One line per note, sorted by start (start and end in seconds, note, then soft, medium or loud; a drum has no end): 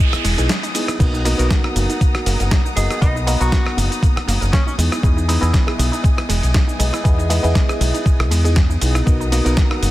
0.00 0.35 B3 medium
0.00 0.96 B3 medium
0.00 0.35 E4 medium
0.00 0.36 G#4 medium
0.00 0.35 D#5 medium
0.00 0.36 E5 loud
0.00 0.96 G#5 medium
0.00 9.03 D#6 medium
0.00 noise sweep medium
0.00 shaker soft
0.13 0.17 E4 medium
0.13 muted fingered electric bass stroke soft
0.13 cross-stick medium
0.13 closed hi-hat soft
0.13 shaker soft
0.24 0.34 E1 medium
0.24 0.37 G#3 loud
0.24 open hi-hat loud
0.24 ride medium
0.24 shaker medium
0.38 0.46 B1 medium
0.38 0.48 B3 medium
0.38 0.48 D#4 medium
0.38 0.48 E4 medium
0.38 0.42 G#4 medium
0.38 0.48 G#4 medium
0.38 0.48 D#5 medium
0.38 closed hi-hat medium
0.38 shaker soft
0.49 0.55 G#3 medium
0.49 snare loud
0.49 closed hi-hat medium
0.49 shaker soft
0.63 0.70 D#4 medium
0.63 closed hi-hat soft
0.63 shaker soft
0.74 0.80 G#3 medium
0.74 0.97 B3 medium
0.74 0.97 D#4 medium
0.74 0.97 E4 medium
0.74 0.97 G#4 medium
0.74 0.98 D#5 medium
0.74 open hi-hat medium
0.74 ride medium
0.74 shaker medium
0.88 0.99 E4 medium
0.88 cross-stick medium
0.88 closed hi-hat medium
0.88 shaker soft
0.99 1.33 B1 loud
0.99 1.08 A#3 medium
0.99 1.22 B3 loud
0.99 4.74 B3 medium
0.99 1.22 D#4 medium
0.99 1.22 F#4 medium
0.99 1.23 A#4 medium
0.99 1.23 D#5 loud
0.99 4.74 F#5 medium
0.99 4.74 A#5 medium
0.99 kick loud
0.99 closed hi-hat medium
0.99 crash medium
0.99 shaker soft
1.14 1.21 D#4 medium
1.14 shaker soft
1.25 1.37 A#3 loud
1.25 1.37 B3 medium
1.25 1.37 D#4 medium
1.25 1.37 F#4 medium
1.25 1.37 A#4 medium
1.25 1.37 D#5 loud
1.25 open hi-hat loud
1.25 ride medium
1.25 shaker medium
1.38 1.47 B1 loud
1.38 2.73 B3 medium
1.38 2.73 D#4 medium
1.38 1.49 D#4 medium
1.38 2.74 F#4 medium
1.38 2.74 A#4 medium
1.38 2.74 F#5 loud
1.38 closed hi-hat medium
1.38 shaker soft
1.50 1.55 A#3 medium
1.50 kick loud
1.50 snare loud
1.50 closed hi-hat medium
1.50 shaker soft
1.64 1.71 A#4 loud
1.64 cross-stick medium
1.76 1.85 F#1 loud
1.76 1.81 A#3 medium
1.76 open hi-hat medium
1.76 ride medium
1.76 shaker medium
1.89 1.96 D#4 medium
1.89 closed hi-hat medium
1.89 shaker soft
2.01 2.09 A#3 medium
2.01 kick loud
2.01 closed hi-hat medium
2.01 shaker soft
2.15 2.19 F#4 medium
2.15 cross-stick medium
2.15 closed hi-hat soft
2.26 2.36 F#1 medium
2.26 2.39 A#3 loud
2.26 open hi-hat loud
2.26 ride medium
2.26 shaker medium
2.40 2.48 F#1 medium
2.40 2.44 A#4 medium
2.40 closed hi-hat medium
2.40 shaker soft
2.51 2.56 A#3 medium
2.51 kick loud
2.51 snare loud
2.51 closed hi-hat medium
2.51 shaker soft
2.65 2.72 D#4 medium
2.65 shaker soft
2.76 2.86 F#1 medium
2.76 2.81 A#3 medium
2.76 2.99 B3 medium
2.76 2.99 D#4 medium
2.76 2.99 F#4 medium
2.76 2.85 G#4 medium
2.76 2.99 A#4 medium
2.76 2.99 D#5 medium
2.76 open hi-hat loud
2.76 ride medium
2.76 shaker medium
2.90 3.01 F#4 medium
2.90 2.97 G#4 medium
2.90 cross-stick medium
2.90 closed hi-hat medium
2.90 shaker soft
3.01 3.35 B1 loud
3.01 3.10 A#3 medium
3.01 3.24 B3 medium
3.01 3.15 D#4 medium
3.01 3.24 D#4 medium
3.01 3.24 F#4 medium
3.01 3.24 A#4 medium
3.01 3.24 D#5 loud
3.01 kick loud
3.01 closed hi-hat medium
3.01 shaker soft
3.15 3.22 D#4 medium
3.15 shaker soft
3.27 3.39 A#3 loud
3.27 3.38 B3 medium
3.27 3.39 D#4 medium
3.27 3.39 F#4 medium
3.27 3.39 A#4 medium
3.27 3.39 D#5 loud
3.27 open hi-hat loud
3.27 ride medium
3.27 shaker medium
3.40 3.49 B1 loud
3.40 4.75 B3 medium
3.40 3.51 D#4 medium
3.40 4.76 D#4 medium
3.40 3.77 F#4 loud
3.40 4.76 F#4 medium
3.40 4.76 A#4 medium
3.40 4.76 F#5 loud
3.40 closed hi-hat medium
3.40 shaker soft
3.52 3.57 A#3 medium
3.52 kick loud
3.52 snare loud
3.52 closed hi-hat medium
3.52 shaker soft
3.66 3.73 A#4 loud
3.66 cross-stick medium
3.77 3.87 F#1 loud
3.77 3.82 A#3 medium
3.77 open hi-hat medium
3.77 ride medium
3.77 shaker medium
3.91 3.98 D#4 medium
3.91 closed hi-hat medium
3.91 shaker soft
4.02 4.11 A#3 medium
4.02 kick loud
4.02 closed hi-hat medium
4.02 shaker soft
4.16 4.20 F#4 medium
4.16 muted fingered electric bass stroke soft
4.16 cross-stick medium
4.16 closed hi-hat soft
4.28 4.38 F#1 medium
4.28 4.40 A#3 loud
4.28 open hi-hat loud
4.28 ride medium
4.28 shaker medium
4.41 4.50 F#1 medium
4.41 4.46 A#4 medium
4.41 closed hi-hat medium
4.41 shaker soft
4.53 4.58 A#3 medium
4.53 4.61 C#4 loud
4.53 kick loud
4.53 snare loud
4.53 closed hi-hat medium
4.53 shaker soft
4.67 4.74 C#4 medium
4.67 4.74 D#4 medium
4.67 shaker soft
4.78 4.88 E2 medium
4.78 4.83 G#3 medium
4.78 9.91 B3 medium
4.78 5.01 B3 medium
4.78 5.01 D#4 medium
4.78 5.01 E4 medium
4.78 5.01 G#4 medium
4.78 5.01 D#5 medium
4.78 9.03 G#5 medium
4.78 open hi-hat loud
4.78 ride medium
4.78 shaker medium
4.92 5.02 E4 medium
4.92 cross-stick medium
4.92 closed hi-hat medium
4.92 shaker soft
5.03 5.36 E2 loud
5.03 5.11 G#3 medium
5.03 5.26 B3 medium
5.03 5.26 D#4 medium
5.03 5.26 E4 medium
5.03 5.26 G#4 medium
5.03 5.26 D#5 loud
5.03 kick loud
5.03 closed hi-hat medium
5.03 shaker soft
5.17 5.24 D#4 medium
5.17 shaker soft
5.28 5.41 G#3 loud
5.28 5.40 B3 medium
5.28 5.40 D#4 medium
5.28 5.40 E4 medium
5.28 5.40 G#4 medium
5.28 5.40 D#5 loud
5.28 open hi-hat loud
5.28 ride medium
5.28 shaker medium
5.41 5.50 E2 loud
5.41 6.76 B3 medium
5.41 5.52 D#4 medium
5.41 6.77 E4 medium
5.41 6.77 G#4 medium
5.41 6.77 D#5 medium
5.41 6.77 E5 loud
5.41 closed hi-hat medium
5.41 shaker soft
5.53 5.59 G#3 medium
5.53 kick loud
5.53 snare loud
5.53 closed hi-hat medium
5.53 shaker soft
5.67 5.74 G#4 loud
5.67 cross-stick medium
5.79 5.89 B1 loud
5.79 5.84 G#3 medium
5.79 open hi-hat loud
5.79 ride medium
5.79 shaker medium
5.92 5.99 D#4 medium
5.92 closed hi-hat soft
5.92 shaker soft
6.04 6.12 G#3 medium
6.04 kick loud
6.04 closed hi-hat medium
6.04 shaker soft
6.17 6.22 E4 medium
6.17 cross-stick medium
6.17 closed hi-hat soft
6.29 6.39 E1 medium
6.29 6.41 G#3 loud
6.29 open hi-hat loud
6.29 ride medium
6.29 shaker medium
6.43 6.51 B1 medium
6.43 6.47 G#4 medium
6.43 closed hi-hat soft
6.43 shaker soft
6.54 6.59 G#3 medium
6.54 kick loud
6.54 snare loud
6.54 closed hi-hat medium
6.54 shaker soft
6.68 6.75 D#4 medium
6.68 shaker soft
6.79 6.90 B1 medium
6.79 6.84 G#3 medium
6.79 7.02 B3 medium
6.79 7.02 D#4 medium
6.79 7.02 E4 medium
6.79 7.02 G#4 medium
6.79 7.02 D#5 medium
6.79 open hi-hat loud
6.79 ride medium
6.79 shaker medium
6.93 7.04 E4 medium
6.93 cross-stick medium
6.93 closed hi-hat medium
6.93 shaker soft
7.04 7.38 E2 loud
7.04 7.13 G#3 medium
7.04 7.27 B3 medium
7.04 7.27 D#4 medium
7.04 7.27 E4 medium
7.04 7.27 G#4 medium
7.04 7.28 D#5 loud
7.04 kick loud
7.04 closed hi-hat medium
7.04 shaker soft
7.18 7.25 D#4 medium
7.18 shaker soft
7.30 7.42 G#3 loud
7.30 7.42 B3 medium
7.30 7.42 D#4 medium
7.30 7.42 E4 medium
7.30 7.42 G#4 medium
7.30 7.42 D#5 loud
7.30 open hi-hat loud
7.30 ride medium
7.30 shaker medium
7.43 7.52 E2 loud
7.43 8.42 B3 medium
7.43 7.54 D#4 medium
7.43 8.42 E4 medium
7.43 8.42 G#4 medium
7.43 8.42 D#5 medium
7.43 8.43 E5 loud
7.43 closed hi-hat soft
7.43 shaker soft
7.55 7.60 G#3 medium
7.55 kick loud
7.55 snare loud
7.55 closed hi-hat medium
7.55 shaker soft
7.69 7.76 G#4 loud
7.69 cross-stick medium
7.69 shaker soft
7.80 7.90 B1 loud
7.80 7.85 G#3 medium
7.80 open hi-hat loud
7.80 ride medium
7.80 shaker medium
7.94 8.01 D#4 medium
7.94 closed hi-hat soft
7.94 shaker soft
8.06 8.14 G#3 medium
8.06 kick loud
8.06 closed hi-hat medium
8.06 shaker soft
8.19 8.31 B1 medium
8.19 8.24 E4 medium
8.19 cross-stick medium
8.19 closed hi-hat soft
8.31 8.76 E2 medium
8.31 8.43 G#3 loud
8.31 open hi-hat loud
8.31 ride medium
8.31 shaker medium
8.44 8.54 B3 medium
8.44 8.54 D#4 medium
8.44 8.55 E4 medium
8.44 8.49 G#4 medium
8.44 8.55 G#4 medium
8.44 8.55 D#5 medium
8.44 closed hi-hat soft
8.44 shaker soft
8.56 8.61 G#3 medium
8.56 kick loud
8.56 snare loud
8.56 closed hi-hat medium
8.56 shaker soft
8.70 8.77 D#4 medium
8.70 shaker soft
8.81 9.00 B1 loud
8.81 8.86 G#3 medium
8.81 9.04 B3 medium
8.81 9.04 D#4 medium
8.81 9.04 E4 medium
8.81 9.04 G#4 medium
8.81 9.04 D#5 medium
8.81 open hi-hat loud
8.81 ride medium
8.81 shaker medium
8.95 9.06 E4 medium
8.95 cross-stick medium
8.95 closed hi-hat soft
8.95 shaker soft
9.06 9.39 B1 loud
9.06 9.15 A#3 medium
9.06 9.29 B3 medium
9.06 9.29 D#4 medium
9.06 9.29 F#4 medium
9.06 9.29 A#4 medium
9.06 9.29 D#5 loud
9.06 9.91 F#5 medium
9.06 9.91 A#5 medium
9.06 9.91 D#6 medium
9.06 kick loud
9.06 closed hi-hat medium
9.06 shaker soft
9.20 9.27 D#4 medium
9.20 shaker soft
9.32 9.44 A#3 loud
9.32 9.43 B3 medium
9.32 9.44 D#4 medium
9.32 9.44 F#4 medium
9.32 9.44 A#4 medium
9.32 9.44 D#5 loud
9.32 open hi-hat loud
9.32 ride medium
9.32 shaker medium
9.45 9.54 B1 loud
9.45 9.91 B3 medium
9.45 9.56 D#4 medium
9.45 9.91 D#4 medium
9.45 9.91 F#4 medium
9.45 9.91 A#4 medium
9.45 9.91 F#5 loud
9.45 closed hi-hat medium
9.45 shaker soft
9.57 9.62 A#3 medium
9.57 kick loud
9.57 snare loud
9.57 closed hi-hat medium
9.57 shaker soft
9.71 9.78 A#4 loud
9.71 cross-stick medium
9.82 9.91 F#1 loud
9.82 9.87 A#3 medium
9.82 open hi-hat medium
9.82 ride medium
9.82 shaker medium